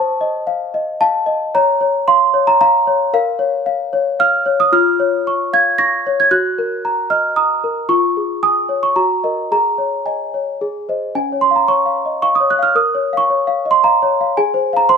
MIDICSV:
0, 0, Header, 1, 2, 480
1, 0, Start_track
1, 0, Key_signature, -5, "minor"
1, 0, Tempo, 531915
1, 1389, Time_signature, 3, 2, 24, 8
1, 4269, Key_signature, -5, "major"
1, 7620, Tempo, 541516
1, 10500, Tempo, 531915
1, 13460, End_track
2, 0, Start_track
2, 0, Title_t, "Celesta"
2, 0, Program_c, 0, 8
2, 0, Note_on_c, 0, 72, 63
2, 0, Note_on_c, 0, 81, 76
2, 101, Control_c, 0, 64, 127
2, 188, Note_on_c, 0, 75, 55
2, 424, Note_on_c, 0, 77, 60
2, 572, Note_off_c, 0, 75, 0
2, 668, Note_off_c, 0, 81, 0
2, 669, Note_on_c, 0, 75, 57
2, 811, Note_off_c, 0, 77, 0
2, 908, Note_on_c, 0, 81, 97
2, 909, Note_on_c, 0, 77, 59
2, 1054, Note_off_c, 0, 75, 0
2, 1140, Note_on_c, 0, 75, 58
2, 1294, Note_off_c, 0, 77, 0
2, 1356, Note_off_c, 0, 72, 0
2, 1385, Note_off_c, 0, 75, 0
2, 1390, Note_off_c, 0, 81, 0
2, 1395, Note_on_c, 0, 73, 70
2, 1397, Note_on_c, 0, 82, 94
2, 1408, Control_c, 0, 64, 0
2, 1542, Control_c, 0, 64, 127
2, 1620, Note_off_c, 0, 73, 0
2, 1631, Note_on_c, 0, 73, 58
2, 1873, Note_off_c, 0, 82, 0
2, 1874, Note_on_c, 0, 84, 99
2, 1875, Note_on_c, 0, 77, 58
2, 2014, Note_off_c, 0, 73, 0
2, 2109, Note_on_c, 0, 73, 64
2, 2231, Note_off_c, 0, 84, 0
2, 2231, Note_on_c, 0, 82, 104
2, 2256, Note_off_c, 0, 77, 0
2, 2342, Note_off_c, 0, 82, 0
2, 2353, Note_on_c, 0, 77, 63
2, 2353, Note_on_c, 0, 82, 108
2, 2493, Note_off_c, 0, 73, 0
2, 2591, Note_on_c, 0, 73, 61
2, 2735, Note_off_c, 0, 77, 0
2, 2829, Note_on_c, 0, 70, 65
2, 2830, Note_off_c, 0, 73, 0
2, 2831, Note_off_c, 0, 82, 0
2, 2831, Note_on_c, 0, 77, 81
2, 2847, Control_c, 0, 64, 0
2, 3010, Control_c, 0, 64, 127
2, 3059, Note_on_c, 0, 73, 58
2, 3293, Note_off_c, 0, 77, 0
2, 3304, Note_on_c, 0, 77, 64
2, 3448, Note_off_c, 0, 73, 0
2, 3546, Note_on_c, 0, 73, 60
2, 3690, Note_off_c, 0, 77, 0
2, 3786, Note_on_c, 0, 77, 61
2, 3790, Note_on_c, 0, 89, 103
2, 3932, Note_off_c, 0, 73, 0
2, 4023, Note_on_c, 0, 73, 62
2, 4149, Note_off_c, 0, 89, 0
2, 4150, Note_on_c, 0, 87, 94
2, 4171, Note_off_c, 0, 77, 0
2, 4233, Note_off_c, 0, 70, 0
2, 4263, Note_on_c, 0, 65, 73
2, 4266, Note_off_c, 0, 73, 0
2, 4266, Note_on_c, 0, 89, 98
2, 4270, Note_off_c, 0, 87, 0
2, 4285, Control_c, 0, 64, 0
2, 4418, Control_c, 0, 64, 127
2, 4508, Note_on_c, 0, 73, 60
2, 4758, Note_on_c, 0, 85, 64
2, 4889, Note_off_c, 0, 73, 0
2, 4983, Note_off_c, 0, 89, 0
2, 4992, Note_on_c, 0, 77, 62
2, 4996, Note_on_c, 0, 92, 97
2, 5133, Note_off_c, 0, 85, 0
2, 5220, Note_on_c, 0, 94, 102
2, 5222, Note_on_c, 0, 85, 60
2, 5229, Note_off_c, 0, 92, 0
2, 5370, Note_off_c, 0, 77, 0
2, 5473, Note_on_c, 0, 73, 56
2, 5580, Note_off_c, 0, 94, 0
2, 5594, Note_on_c, 0, 92, 98
2, 5606, Note_off_c, 0, 85, 0
2, 5663, Note_off_c, 0, 65, 0
2, 5695, Note_on_c, 0, 66, 68
2, 5695, Note_on_c, 0, 90, 98
2, 5708, Note_off_c, 0, 73, 0
2, 5708, Note_off_c, 0, 92, 0
2, 5720, Control_c, 0, 64, 0
2, 5843, Control_c, 0, 64, 127
2, 5942, Note_on_c, 0, 70, 55
2, 6180, Note_on_c, 0, 82, 59
2, 6326, Note_off_c, 0, 70, 0
2, 6408, Note_on_c, 0, 75, 54
2, 6409, Note_on_c, 0, 89, 86
2, 6419, Note_off_c, 0, 90, 0
2, 6565, Note_off_c, 0, 82, 0
2, 6644, Note_on_c, 0, 87, 73
2, 6646, Note_on_c, 0, 82, 59
2, 6656, Note_off_c, 0, 89, 0
2, 6799, Note_off_c, 0, 75, 0
2, 6893, Note_off_c, 0, 87, 0
2, 6893, Note_on_c, 0, 70, 49
2, 7038, Note_off_c, 0, 82, 0
2, 7102, Note_off_c, 0, 66, 0
2, 7118, Note_on_c, 0, 65, 62
2, 7119, Note_on_c, 0, 85, 83
2, 7137, Note_off_c, 0, 70, 0
2, 7159, Control_c, 0, 64, 0
2, 7308, Control_c, 0, 64, 127
2, 7372, Note_on_c, 0, 68, 44
2, 7605, Note_on_c, 0, 80, 52
2, 7606, Note_on_c, 0, 87, 87
2, 7608, Note_off_c, 0, 85, 0
2, 7757, Note_off_c, 0, 68, 0
2, 7837, Note_on_c, 0, 73, 47
2, 7961, Note_on_c, 0, 85, 72
2, 7968, Note_off_c, 0, 87, 0
2, 7992, Note_off_c, 0, 80, 0
2, 8054, Note_off_c, 0, 65, 0
2, 8076, Note_on_c, 0, 82, 73
2, 8078, Note_on_c, 0, 66, 59
2, 8085, Note_off_c, 0, 73, 0
2, 8087, Note_off_c, 0, 85, 0
2, 8113, Control_c, 0, 64, 0
2, 8269, Control_c, 0, 64, 127
2, 8322, Note_on_c, 0, 75, 48
2, 8326, Note_on_c, 0, 70, 43
2, 8544, Note_off_c, 0, 75, 0
2, 8546, Note_off_c, 0, 70, 0
2, 8552, Note_off_c, 0, 66, 0
2, 8562, Note_off_c, 0, 82, 0
2, 8569, Note_on_c, 0, 68, 53
2, 8573, Note_on_c, 0, 82, 75
2, 8589, Control_c, 0, 64, 0
2, 8712, Control_c, 0, 64, 127
2, 8805, Note_on_c, 0, 73, 45
2, 9049, Note_on_c, 0, 80, 55
2, 9051, Note_on_c, 0, 75, 39
2, 9056, Note_off_c, 0, 82, 0
2, 9197, Note_off_c, 0, 73, 0
2, 9301, Note_on_c, 0, 73, 43
2, 9442, Note_off_c, 0, 75, 0
2, 9509, Note_off_c, 0, 68, 0
2, 9542, Note_off_c, 0, 73, 0
2, 9543, Note_on_c, 0, 68, 55
2, 9560, Control_c, 0, 64, 0
2, 9726, Control_c, 0, 64, 127
2, 9779, Note_off_c, 0, 80, 0
2, 9786, Note_on_c, 0, 72, 41
2, 9790, Note_on_c, 0, 75, 43
2, 10001, Note_off_c, 0, 72, 0
2, 10004, Note_off_c, 0, 75, 0
2, 10010, Note_off_c, 0, 68, 0
2, 10020, Note_on_c, 0, 61, 55
2, 10021, Note_on_c, 0, 80, 68
2, 10042, Control_c, 0, 64, 0
2, 10172, Control_c, 0, 64, 127
2, 10172, Note_on_c, 0, 73, 41
2, 10252, Note_on_c, 0, 84, 77
2, 10261, Note_off_c, 0, 80, 0
2, 10337, Note_on_c, 0, 77, 49
2, 10376, Note_off_c, 0, 84, 0
2, 10379, Note_on_c, 0, 82, 67
2, 10432, Note_off_c, 0, 73, 0
2, 10491, Note_on_c, 0, 85, 76
2, 10492, Note_on_c, 0, 73, 44
2, 10499, Note_off_c, 0, 82, 0
2, 10595, Note_off_c, 0, 77, 0
2, 10648, Note_on_c, 0, 77, 45
2, 10754, Note_off_c, 0, 73, 0
2, 10825, Note_on_c, 0, 75, 42
2, 10913, Note_off_c, 0, 77, 0
2, 10968, Note_off_c, 0, 85, 0
2, 10979, Note_on_c, 0, 85, 84
2, 10981, Note_on_c, 0, 77, 46
2, 10985, Note_off_c, 0, 75, 0
2, 11096, Note_on_c, 0, 87, 75
2, 11102, Note_off_c, 0, 85, 0
2, 11141, Note_on_c, 0, 73, 47
2, 11221, Note_off_c, 0, 87, 0
2, 11232, Note_on_c, 0, 90, 85
2, 11240, Note_off_c, 0, 77, 0
2, 11306, Note_on_c, 0, 77, 49
2, 11342, Note_on_c, 0, 89, 82
2, 11349, Note_off_c, 0, 90, 0
2, 11400, Note_off_c, 0, 73, 0
2, 11428, Note_off_c, 0, 61, 0
2, 11457, Note_on_c, 0, 70, 61
2, 11459, Note_on_c, 0, 87, 74
2, 11464, Note_off_c, 0, 89, 0
2, 11466, Note_off_c, 0, 77, 0
2, 11484, Control_c, 0, 64, 0
2, 11630, Note_on_c, 0, 73, 48
2, 11643, Control_c, 0, 64, 127
2, 11797, Note_on_c, 0, 77, 49
2, 11823, Note_off_c, 0, 87, 0
2, 11836, Note_on_c, 0, 85, 84
2, 11885, Note_off_c, 0, 73, 0
2, 11950, Note_on_c, 0, 73, 48
2, 12048, Note_off_c, 0, 77, 0
2, 12106, Note_on_c, 0, 77, 59
2, 12205, Note_off_c, 0, 73, 0
2, 12270, Note_on_c, 0, 75, 48
2, 12311, Note_off_c, 0, 85, 0
2, 12318, Note_on_c, 0, 84, 87
2, 12362, Note_off_c, 0, 77, 0
2, 12428, Note_off_c, 0, 75, 0
2, 12432, Note_off_c, 0, 84, 0
2, 12435, Note_on_c, 0, 82, 89
2, 12440, Note_on_c, 0, 77, 58
2, 12603, Note_on_c, 0, 73, 62
2, 12688, Note_off_c, 0, 77, 0
2, 12768, Note_on_c, 0, 77, 58
2, 12849, Note_off_c, 0, 73, 0
2, 12863, Note_off_c, 0, 70, 0
2, 12908, Note_off_c, 0, 82, 0
2, 12916, Note_off_c, 0, 77, 0
2, 12917, Control_c, 0, 64, 0
2, 12918, Note_on_c, 0, 80, 86
2, 12921, Note_on_c, 0, 68, 71
2, 13048, Control_c, 0, 64, 127
2, 13069, Note_on_c, 0, 72, 60
2, 13241, Note_on_c, 0, 77, 60
2, 13270, Note_off_c, 0, 80, 0
2, 13272, Note_on_c, 0, 82, 87
2, 13321, Note_off_c, 0, 72, 0
2, 13386, Note_on_c, 0, 72, 61
2, 13386, Note_on_c, 0, 84, 97
2, 13387, Note_off_c, 0, 82, 0
2, 13460, Note_off_c, 0, 68, 0
2, 13460, Note_off_c, 0, 72, 0
2, 13460, Note_off_c, 0, 77, 0
2, 13460, Note_off_c, 0, 84, 0
2, 13460, End_track
0, 0, End_of_file